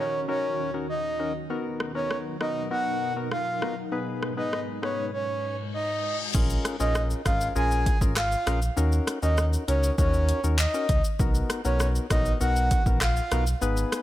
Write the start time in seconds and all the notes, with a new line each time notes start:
Already playing: D#2 D#3 C#4 D#4 F#4
0.00 A#4 C#5
0.28 C#4 D#4 F#4 A#4 C#5
0.74 C#4 D#4 F#4 A#4
0.89 D#5
1.19 C#4 D#4 F#4 A#4
1.49 B2 F#3 B3 D#4 F#4 A#4
1.80 cross-stick
1.95 B3 D#4 F#4 A#4 C#5
2.11 cross-stick
2.40 B3 D#4 F#4 A#4 D#5, cross-stick
2.71 B3 D#4 F#4 A#4 F#5
3.16 B3 D#4 F#4 A#4
3.32 F5, cross-stick
3.62 B3 D#4 F#4 A#4, cross-stick
3.92 G#2 G#3 B3 D#4 G#4 B4
4.23 cross-stick
4.37 B3 D#4 G#4 B4 D#5
4.53 cross-stick
4.82 B3 D#4 G#4 B4 C#5, cross-stick
5.13 C#5, reverse cymbal
5.74 D#5
6.34 A#1 C#4 F4 G#4 A#4, kick, crash, shaker
6.50 shaker
6.65 cross-stick, closed hi-hat, shaker
6.80 A#1 C#4 F4 G#4 A#4 D#5, shaker
6.95 cross-stick, shaker
7.10 shaker
7.25 G#1 C#4 F4 G#4 A#4 F5, kick, cross-stick, closed hi-hat, shaker
7.41 shaker
7.55 A#1 C#4 F4 G#4 A#4 G#5, shaker
7.71 shaker
7.86 kick, closed hi-hat, shaker
8.01 G#1 C#4 F4 G#4 A#4, kick, shaker
8.16 F5, cross-stick, clap, shaker
8.32 shaker
8.46 A#1 C#4 F4 G#4 A#4, cross-stick, closed hi-hat, shaker
8.62 shaker
8.77 D#2 C#4 D#4 F#4 A#4, shaker
8.92 shaker
9.07 cross-stick, closed hi-hat, shaker
9.22 D#2 C#4 D#4 F#4 A#4 D#5, shaker
9.38 cross-stick, shaker
9.53 shaker
9.68 C#2 C#4 D#4 F#4 A#4 C#5, closed hi-hat, shaker
9.83 shaker
9.98 D#2 C#4 D#4 F#4 A#4 C#5, kick, shaker
10.14 shaker
10.29 closed hi-hat, shaker
10.44 D#2 C#4 D#4 F#4 A#4, shaker
10.59 D#5, clap, shaker
10.74 C#4 D#4 F#4 A#4, shaker
10.89 C#2, kick, closed hi-hat, shaker
11.04 shaker
11.19 B1 B3 D#4 F#4 A#4, kick, shaker
11.35 shaker
11.50 cross-stick, closed hi-hat, shaker
11.65 B1 B3 D#4 F#4 A#4 C#5, shaker
11.80 cross-stick, shaker
11.95 shaker
12.10 A#1 B3 D#4 F#4 A#4 D#5, kick, cross-stick, closed hi-hat, shaker
12.26 shaker
12.40 B1 B3 D#4 F#4 A#4 F#5, shaker
12.56 shaker
12.71 kick, closed hi-hat, shaker
12.86 A#1 B3 D#4 F#4 A#4, kick, shaker
13.01 F5, cross-stick, clap, shaker
13.17 shaker
13.31 B1 B3 D#4 F#4 A#4, cross-stick, closed hi-hat, shaker
13.47 shaker
13.61 G#1 B3 D#4 G#4 B4, shaker
13.77 shaker
13.92 cross-stick, closed hi-hat, shaker